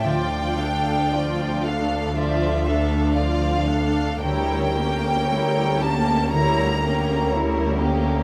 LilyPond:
<<
  \new Staff \with { instrumentName = "Violin section" } { \time 4/4 \key d \minor \tempo 4 = 58 g''4. f''8 e''4 f''4 | g''4. a''8 ais''4 r4 | }
  \new Staff \with { instrumentName = "Violin section" } { \time 4/4 \key d \minor <f' d''>8 <a' f''>8 <f' d''>8 <a' f''>8 <f' d''>8 <a' f''>8 <f' d''>8 <a' f''>8 | <ais' cis''>8 <g' ais'>8 <ais' cis''>8 <g' ais'>8 <ais' cis''>8 <g' ais'>8 <ais' cis''>8 <g' ais'>8 | }
  \new Staff \with { instrumentName = "Harp" } { \time 4/4 \key d \minor \tuplet 3/2 { d8 d'8 a8 d'8 c'8 d'8 a8 d'8 a8 d'8 c'8 d'8 } | \tuplet 3/2 { d8 cis'8 ais8 cis'8 ais8 cis'8 d8 ais8 cis'8 ais8 a8 cis'8 } | }
  \new Staff \with { instrumentName = "Viola section" } { \time 4/4 \key d \minor <f f'>8 <a d'>8 <f f'>8 <a d'>8 <f f'>8 <a d'>8 <f f'>8 <a d'>8 | <g e'>8 <ais cis'>8 <g e'>8 <ais cis'>8 <g e'>8 <ais cis'>8 <g e'>8 <ais cis'>8 | }
  \new Staff \with { instrumentName = "Cello section" } { \clef bass \time 4/4 \key d \minor d,1 | d,1 | }
  \new Staff \with { instrumentName = "Double bass section" } { \clef bass \time 4/4 \key d \minor d,1 | d,1 | }
>>